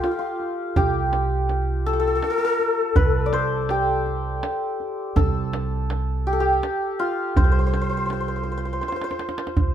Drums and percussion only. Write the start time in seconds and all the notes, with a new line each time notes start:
0.04 tombak tek
0.40 tombak ka
0.76 tombak dum
1.13 tombak tek
1.49 tombak tek
1.86 tombak ka
2.23 tombak tek
2.59 tombak ka
2.96 tombak dum
3.33 tombak tek
3.69 tombak tek
4.06 tombak ka
4.43 tombak tek
4.80 tombak ka
5.17 tombak dum
5.53 tombak tek
5.90 tombak tek
6.27 tombak ka
6.63 tombak tek
7.00 tombak ka
7.36 tombak dum
7.74 tombak tek
8.10 tombak tek
8.47 tombak ka
8.83 tombak tek
8.92 tombak ka
9.01 tombak tek
9.11 tombak ka
9.19 tombak tek
9.29 tombak ka
9.38 tombak tek
9.47 tombak ka
9.57 tombak dum